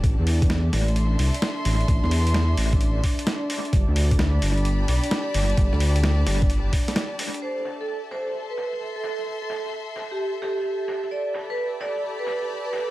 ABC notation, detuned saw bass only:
X:1
M:4/4
L:1/16
Q:"Swing 16ths" 1/4=130
K:Am
V:1 name="Detuned saw bass" clef=bass
A,,, E,,4- E,, A,,,4 C,, z3 A,,, z | A,,, E,,4- E,, A,,,4 z6 | G,,, D,,4- D,, G,,,4 B,,, z3 G,,, z | G,,, D,,4- D,, G,,,4 z6 |
z16 | z16 | z16 |]